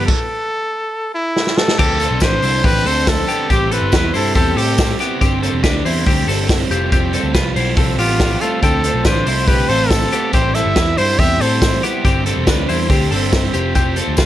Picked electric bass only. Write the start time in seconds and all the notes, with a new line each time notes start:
1.79 D2
2.11 B1
2.22 A1
2.42 C2
2.64 A1
2.85 D2
3.50 A1
3.82 G1
3.93 E2
4.14 G2
4.35 E2
4.57 A2
5.21 G1
5.53 E1
5.64 D2
5.85 E2
6.06 D2
6.27 G1
6.70 F1
7.24 D2
7.35 C2
7.56 B1
7.77 C2
7.98 A1
8.63 D2
8.94 B1
9.05 A1
9.27 C2
9.69 A1
10.33 A1
10.66 G1
10.76 E2
10.97 G2
11.19 E2
11.40 A2
12.05 G1
12.37 E1
12.47 D2
12.69 E2
12.90 D2
13.12 G1
13.55 F1
14.08 D2
14.18 C2